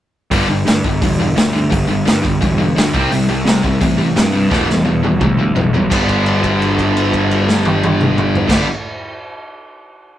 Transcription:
0.31 0.46 G1 medium
0.31 0.48 G2 medium
0.31 0.48 D3 loud
0.31 0.48 G3 medium
0.31 kick loud
0.31 open hi-hat medium
0.48 0.64 G1 medium
0.48 0.65 G2 medium
0.48 0.65 D3 medium
0.65 0.81 G2 medium
0.65 0.82 G2 medium
0.65 0.82 D3 medium
0.65 snare loud
0.65 open hi-hat medium
0.83 0.99 G1 medium
0.83 0.99 G2 medium
0.83 1.00 D3 medium
0.83 kick loud
1.01 1.32 E1 medium
1.01 1.17 G2 medium
1.01 1.17 D3 medium
1.01 kick loud
1.01 open hi-hat medium
1.19 1.34 G2 medium
1.19 1.35 D3 medium
1.36 1.67 D2 medium
1.36 1.52 G2 medium
1.36 1.52 D3 medium
1.36 snare loud
1.36 open hi-hat medium
1.53 1.69 G2 medium
1.53 1.69 D3 medium
1.70 1.87 G1 loud
1.70 1.87 G2 medium
1.70 1.87 D3 medium
1.70 kick loud
1.70 open hi-hat medium
1.88 2.04 G1 medium
1.88 2.04 G2 medium
1.88 2.05 D3 medium
2.05 2.21 G2 medium
2.05 2.22 D3 medium
2.05 snare loud
2.05 open hi-hat medium
2.22 2.40 G1 medium
2.22 2.39 G2 medium
2.22 2.40 D3 medium
2.22 kick medium
2.41 2.72 E1 medium
2.41 2.57 G2 medium
2.41 2.57 D3 medium
2.41 kick loud
2.41 open hi-hat medium
2.58 2.74 G2 medium
2.58 2.75 D3 medium
2.76 2.92 D2 medium
2.76 2.92 G2 medium
2.76 2.92 D3 medium
2.76 snare loud
2.76 open hi-hat medium
2.93 3.09 C2 medium
2.93 3.10 C3 loud
2.93 3.10 G3 loud
2.93 3.10 C4 loud
2.93 kick loud
3.11 3.27 C2 medium
3.11 3.27 C3 medium
3.11 3.27 G3 medium
3.11 open hi-hat medium
3.28 3.44 C2 medium
3.28 3.44 C3 medium
3.28 3.45 G3 medium
3.45 3.61 C3 medium
3.45 3.62 C3 medium
3.45 3.62 G3 medium
3.45 snare loud
3.45 open hi-hat medium
3.63 3.79 C2 medium
3.63 3.79 C3 medium
3.63 3.79 G3 medium
3.63 kick medium
3.80 4.11 A1 medium
3.80 3.96 C3 medium
3.80 3.97 G3 medium
3.80 kick loud
3.80 open hi-hat medium
3.97 4.14 C3 medium
3.97 4.14 G3 medium
4.15 4.46 G2 medium
4.15 4.31 C3 medium
4.15 4.31 G3 medium
4.15 snare loud
4.15 open hi-hat medium
4.32 4.49 C3 medium
4.32 4.49 G3 loud
4.50 4.66 E1 medium
4.50 4.66 E2 medium
4.50 4.67 B2 medium
4.50 4.66 E3 medium
4.50 4.67 G3 medium
4.50 4.67 B3 loud
4.50 kick loud
4.50 snare medium
4.68 4.83 E1 medium
4.68 4.84 E2 medium
4.68 4.84 B2 medium
4.68 4.84 E3 medium
4.68 4.84 G3 medium
4.68 snare medium
4.85 5.01 E2 medium
4.85 5.00 E2 medium
4.85 5.01 B2 medium
4.85 5.01 E3 medium
4.85 5.01 G3 medium
5.03 5.18 E1 medium
5.03 5.19 E2 medium
5.03 5.19 B2 medium
5.03 5.18 E3 medium
5.03 5.19 G3 medium
5.03 high tom medium
5.20 5.51 D2 medium
5.20 5.37 E2 medium
5.20 5.37 B2 medium
5.20 5.36 E3 medium
5.20 5.36 G3 medium
5.20 kick loud
5.20 mid tom medium
5.37 5.54 E2 medium
5.37 5.54 B2 medium
5.37 5.53 E3 medium
5.37 5.53 G3 medium
5.55 5.86 B1 medium
5.55 5.71 E2 medium
5.55 5.71 B2 medium
5.55 5.71 E3 medium
5.55 5.71 G3 medium
5.55 floor tom loud
5.73 5.89 E2 medium
5.73 5.89 B2 medium
5.73 5.89 E3 medium
5.73 5.89 G3 medium
5.73 floor tom medium
5.89 8.42 G1 loud
5.89 8.46 G2 loud
5.89 8.47 D3 medium
5.89 8.48 G3 medium
5.89 8.50 B3 loud
5.89 8.50 D4 loud
5.89 kick loud
5.89 crash medium
6.09 kick medium
6.09 crash soft
6.26 crash soft
6.44 kick medium
6.44 crash soft
6.62 crash soft
6.78 kick medium
6.78 crash soft
6.97 crash medium
7.13 kick medium
7.13 crash soft
7.31 crash soft
7.49 snare medium
7.65 high tom loud
7.84 high tom loud
8.01 mid tom medium
8.18 mid tom medium
8.35 floor tom loud
8.47 8.64 G1 loud
8.47 8.64 G2 loud
8.47 8.64 D3 loud
8.47 8.65 G3 medium
8.47 8.65 B3 medium
8.47 8.66 D4 loud
8.47 kick loud
8.47 snare loud
8.47 crash loud

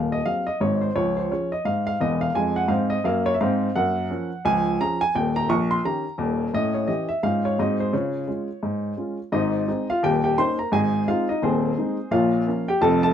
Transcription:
0.00 0.19 D#1 medium
0.00 0.19 D#2 medium
0.00 0.12 F5 medium
0.12 0.26 D#5 medium
0.25 0.45 F#3 soft
0.25 0.44 C4 soft
0.25 0.45 G#4 soft
0.25 0.47 F5 loud
0.47 0.60 D#5 medium
0.60 0.88 G#1 medium
0.60 0.89 G#2 medium
0.60 0.82 C#5 medium
0.81 0.95 C5 medium
0.96 1.25 C#2 medium
0.96 1.16 F3 medium
0.96 1.16 C#5 medium
1.17 1.30 C5 medium
1.31 1.50 F3 soft
1.31 1.50 C#4 medium
1.31 1.51 G#4 soft
1.31 1.52 C#5 medium
1.52 1.65 D#5 medium
1.65 1.95 G#2 medium
1.65 1.85 F5 loud
1.87 2.00 F5 loud
2.01 2.28 E1 medium
2.01 2.28 E2 medium
2.01 2.21 D#5 medium
2.21 2.35 F5 loud
2.34 2.62 F2 medium
2.34 2.64 G#3 medium
2.34 2.56 G#5 medium
2.56 2.70 F#5 medium
2.68 2.97 G#2 medium
2.68 2.98 C4 medium
2.68 2.90 F5 medium
2.90 3.04 D#5 medium
3.04 3.32 F#2 medium
3.04 3.33 A#3 medium
3.04 3.26 F5 loud
3.26 3.34 C#5 loud
3.34 3.39 E5 medium
3.41 3.68 G#2 medium
3.41 3.69 C4 medium
3.41 3.75 F5 medium
3.76 4.05 F#2 medium
3.76 3.96 A#3 medium
3.76 4.44 F#5 loud
4.10 4.29 F3 soft
4.10 4.29 C#4 medium
4.10 4.29 A#4 medium
4.45 4.74 C#2 medium
4.45 4.65 F3 medium
4.45 4.79 G#5 loud
4.80 4.99 F3 medium
4.80 4.99 C#4 medium
4.80 5.00 G#4 medium
4.80 5.01 A#5 loud
5.01 5.14 G#5 loud
5.15 5.42 D#1 medium
5.15 5.42 D#2 medium
5.15 5.36 G5 medium
5.36 5.49 A#5 loud
5.49 5.77 A#1 medium
5.49 5.70 C#6 loud
5.71 5.84 C6 loud
5.85 6.03 D#3 soft
5.85 6.04 C#4 medium
5.85 6.03 G4 medium
5.85 6.19 A#5 medium
6.18 6.46 D#1 medium
6.18 6.46 D#2 medium
6.54 6.83 A2 medium
6.54 6.74 C#4 medium
6.54 6.75 D#5 medium
6.74 6.88 C#5 medium
6.87 7.07 E3 medium
6.87 7.07 C#4 soft
6.87 7.07 G4 medium
6.87 7.09 D#5 medium
7.09 7.22 E5 medium
7.23 7.53 G#2 medium
7.23 7.42 G#3 soft
7.23 7.42 C#4 soft
7.23 7.43 F4 soft
7.23 7.44 F5 loud
7.45 7.58 C#5 medium
7.59 7.88 G#2 medium
7.59 7.78 G#3 soft
7.59 7.79 C4 medium
7.59 7.79 F#4 soft
7.59 7.80 D#5 medium
7.80 7.93 C5 medium
7.93 8.22 C#3 medium
7.93 8.14 F4 soft
7.93 9.19 C#5 medium
8.28 8.47 G#3 soft
8.28 8.47 C#4 soft
8.28 8.47 F4 soft
8.63 8.92 G#2 medium
8.97 9.16 G#3 soft
8.97 9.17 C#4 soft
8.97 9.17 F4 soft
9.32 9.62 G#1 medium
9.32 9.62 G#2 medium
9.32 9.67 D#4 medium
9.32 9.85 C5 medium
9.32 9.88 D#5 medium
9.68 9.87 G#3 soft
9.68 9.87 C4 medium
9.68 9.87 D#4 medium
9.90 10.02 F4 medium
9.90 10.03 F5 loud
10.03 10.32 D#1 medium
10.03 10.32 D#2 medium
10.03 10.23 G4 medium
10.03 10.22 G5 loud
10.24 10.37 G4 medium
10.24 10.37 G5 medium
10.38 10.56 A#3 medium
10.38 10.57 C#4 soft
10.38 10.57 D#4 medium
10.38 10.58 C5 medium
10.38 10.58 C6 loud
10.59 10.72 A#4 medium
10.59 10.72 A#5 medium
10.72 11.02 G#1 medium
10.72 11.01 G#2 medium
10.72 11.05 G#4 medium
10.72 11.05 D#5 medium
10.72 11.07 G#5 loud
11.08 11.27 G#3 medium
11.08 11.27 C4 medium
11.08 11.27 D#4 medium
11.08 11.28 F4 medium
11.08 11.28 F5 loud
11.29 11.42 D#4 medium
11.29 11.42 D#5 medium
11.42 11.72 D#1 medium
11.42 11.72 D#2 medium
11.42 11.76 C4 medium
11.42 12.08 G#4 medium
11.42 12.12 C5 medium
11.77 11.96 G#3 medium
11.77 11.96 C4 soft
11.77 11.97 D#4 medium
12.11 12.41 A#1 medium
12.11 12.41 A#2 medium
12.11 12.64 F4 medium
12.11 12.64 C#5 medium
12.11 12.67 F5 loud
12.47 12.66 F3 soft
12.47 12.66 A#3 medium
12.47 12.66 C#4 medium
12.68 12.81 G4 medium
12.68 12.81 G5 medium
12.81 13.11 F1 medium
12.81 13.11 F2 loud
12.81 13.01 A4 medium
12.81 13.02 A5 loud
13.03 13.13 A4 medium
13.03 13.13 A5 loud

